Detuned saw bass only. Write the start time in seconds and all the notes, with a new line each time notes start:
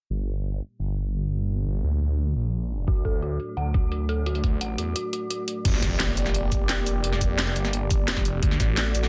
0.10 G1
0.80 G1
1.66 G1
1.83 D2
2.01 D2
2.36 A#1
2.88 D2
3.57 D2
4.44 D2
4.61 A1
4.78 E2
5.65 G1
5.82 F1
6.17 F1
7.56 G1
8.08 F1
8.25 F1
8.43 D2
8.60 A1
8.95 A1